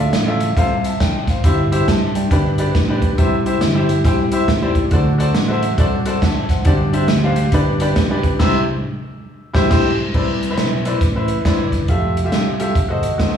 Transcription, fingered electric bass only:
0.14 0.51 A1 medium
0.57 0.94 C2 medium
1.00 1.37 G#1 loud
1.44 1.81 G1 loud
1.88 2.25 G2 medium
2.31 2.68 G1 loud
2.75 3.12 A1 medium
3.19 3.55 C2 loud
3.62 3.99 G1 medium
4.05 4.42 C2 medium
4.48 4.85 D#2 medium
4.91 5.29 D2 medium
5.36 5.73 A1 medium
5.78 6.16 C2 medium
6.22 6.59 G#1 medium
6.65 7.03 G1 loud
7.10 7.47 D2 medium
7.52 7.90 G1 loud
7.96 8.34 C#2 medium
8.40 8.59 C2 medium
9.55 9.66 C2 loud
9.71 9.90 C2 medium
10.14 10.51 C2 loud
10.58 10.95 B1 medium
11.01 11.38 A1 medium
11.45 11.82 F#1 medium
11.89 12.26 F1 medium
12.33 12.70 C2 medium
12.75 12.99 F#1 medium
13.03 13.17 G#1 medium
13.20 13.37 G#1 medium

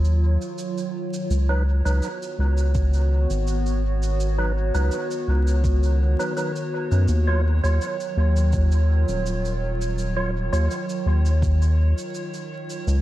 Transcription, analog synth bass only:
0.00 0.37 D#2 medium
1.30 1.82 C#2 loud
1.85 2.01 C#2 loud
2.39 3.26 C#2 medium
3.30 4.71 G#1 medium
4.74 4.90 C#2 medium
5.28 6.16 C#2 medium
6.92 7.07 F#2 medium
7.09 7.60 D#2 medium
7.64 7.79 D#2 loud
8.17 9.05 D#2 medium
9.08 10.49 D#1 medium
10.53 10.68 D#2 loud
11.06 11.94 D#2 medium
12.87 13.02 C#2 medium

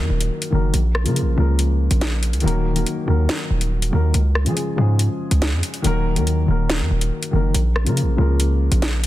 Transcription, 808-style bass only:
0.10 0.30 D#1 loud
0.52 0.73 F#1 loud
0.74 1.07 A#1 loud
1.06 1.23 C#3 loud
1.22 1.37 A#1 loud
1.38 1.89 C#2 loud
1.91 2.35 A#1 loud
2.33 2.43 C#2 loud
2.44 2.85 D#1 loud
3.08 3.28 D#2 loud
3.50 3.91 D#1 loud
3.93 4.13 D#2 loud
4.14 4.48 C#2 loud
4.46 4.56 F3 loud
4.78 5.09 G#2 loud
5.31 5.54 C#2 loud
5.53 5.63 F2 loud
5.84 6.18 D#1 loud
6.16 6.47 D#2 loud
6.48 6.82 D#1 loud
6.80 6.90 F#2 loud
6.91 7.11 D#1 loud
7.33 7.54 F#1 loud
7.54 7.88 A#1 loud
7.86 8.04 C#3 loud
8.02 8.18 A#1 loud
8.18 8.69 C#2 loud
8.72 9.07 A#1 loud

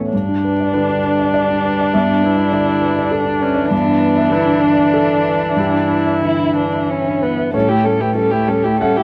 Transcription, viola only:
0.73 1.30 D4 medium
1.34 1.96 D4 medium
1.94 2.26 B3 medium
2.25 3.14 E4 medium
3.13 3.43 D4 medium
3.42 3.71 C#4 medium
3.71 4.32 B3 medium
4.31 4.63 E4 medium
4.61 5.59 D4 medium
5.57 7.22 E4 medium
7.54 7.71 C#4 soft
7.70 7.86 E4 soft
7.85 8.02 C#4 soft
8.00 8.15 E4 soft
8.15 8.34 C#4 soft
8.32 8.50 E4 soft
8.48 8.66 C#4 soft
8.65 8.81 E4 soft
8.81 8.99 C#4 soft
8.97 9.03 E4 soft

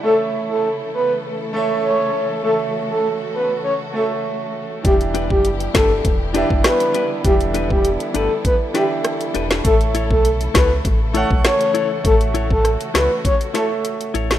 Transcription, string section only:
0.00 2.41 E4 medium
0.04 4.81 C#3 medium
0.04 4.81 E3 medium
0.04 4.81 A3 medium
0.04 4.81 A4 medium
2.45 4.82 F#4 medium
4.84 9.61 D3 medium
4.84 9.61 G3 medium
4.84 9.61 B3 medium
4.84 12.01 E4 medium
4.84 7.22 G4 medium
7.25 14.39 A4 medium
9.65 14.39 C#3 medium
9.65 14.39 E3 medium
9.65 14.39 A3 medium
12.05 14.39 F#4 medium

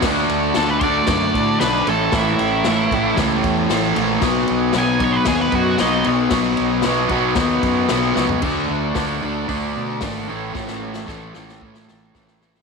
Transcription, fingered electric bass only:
0.03 0.25 D2 medium
0.30 0.51 D2 medium
0.57 1.00 D2 loud
1.08 1.30 F#2 medium
1.35 1.56 A2 medium
1.61 1.83 B1 loud
1.87 2.09 A1 medium
2.13 2.35 A1 loud
2.40 2.61 A1 medium
2.66 2.88 A1 loud
2.91 3.13 A1 loud
3.18 3.40 C#2 medium
3.44 3.66 E2 loud
3.71 3.92 A1 loud
3.96 4.18 A#1 loud
4.22 4.44 B1 loud
4.50 4.71 B1 loud
4.75 5.18 B1 loud
5.27 5.49 D#2 loud
5.53 5.75 F#2 loud
5.80 6.02 B1 loud
6.07 6.28 B1 loud
6.31 6.54 B1 medium
6.60 6.81 B1 medium
6.86 7.07 B1 loud
7.10 7.33 B1 loud
7.36 7.59 D#2 medium
7.63 7.85 F#2 loud
7.91 8.13 B1 loud
8.17 8.39 C#2 medium
8.43 8.69 D2 medium
8.70 8.95 D2 medium
8.96 9.21 D2 loud
9.24 9.49 D2 medium
9.49 9.75 D2 medium
9.76 10.01 B2 medium
10.02 10.28 G#1 loud
10.29 10.55 A1 medium
10.55 11.06 A1 medium
11.08 11.34 A1 medium
11.35 11.61 A1 medium
11.62 11.88 A2 medium
11.91 12.14 A1 medium
12.15 12.62 A1 medium

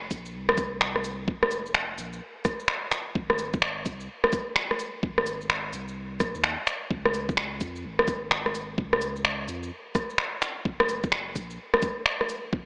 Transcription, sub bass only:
0.11 0.35 A#1 medium
0.34 1.27 C2 medium
1.28 1.97 F1 loud
1.98 2.20 A#1 medium
3.15 3.85 G#1 loud
3.86 4.08 C2 medium
5.03 5.72 G#1 medium
5.73 6.22 C2 medium
6.20 6.34 A#1 loud
6.35 6.56 D#2 medium
6.91 7.60 C#2 medium
7.61 7.86 F2 medium
7.84 8.77 G#1 medium
8.78 9.47 C#2 loud
9.48 9.70 F2 medium
10.65 11.35 F#1 loud
11.36 11.58 A#1 medium
12.53 12.66 F#1 loud

